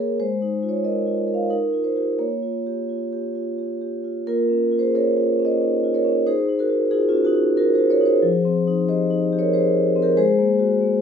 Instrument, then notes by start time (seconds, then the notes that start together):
vibraphone
Already playing: A#3 G#4 C#5
0.00 A#4
0.20 G#3 C5
0.42 D#4
0.63 F4
0.69 C#5
0.84 A#4 D#5
1.07 F4
1.28 A#4
1.34 F5
1.50 D#4 A#4
1.73 F4
1.84 C5
1.96 F4 G4
2.19 A#3 C#5
2.43 F4
2.66 G4
2.89 F4
3.13 G4
3.35 F4
3.59 G4
3.81 G4
4.04 F4
4.27 A#3 F4 A#4
4.49 C#4
4.72 F4
4.79 G#4 C5
4.95 C#4 A#4 C#5
5.17 F4
5.40 C#4
5.45 C5 D#5
5.62 D#4
5.84 F4
5.94 A#4 C#5
6.05 C#4
6.27 D#4 G#4 C5
6.49 D#4
6.59 F#4 A#4
6.70 F#4
6.91 D#4 F4 G#4
7.09 C#4 F4
7.14 F#4
7.25 D#4 F#4
7.35 D#4
7.57 F4 F#4 A#4
7.74 G#4 C5
7.79 F#4
7.90 A#4 C#5
8.01 D#4
8.06 G#4 C5
8.22 F3
8.45 C4
8.67 D#4
8.89 G4 C5 D#5
9.10 D#4
9.33 G4
9.39 A#4 C#5
9.53 G#4 C5
9.75 G4
9.96 C4
10.02 G4 A#4
10.17 G#3 G#4 C5
10.39 A#3
10.59 F#4
10.81 A#3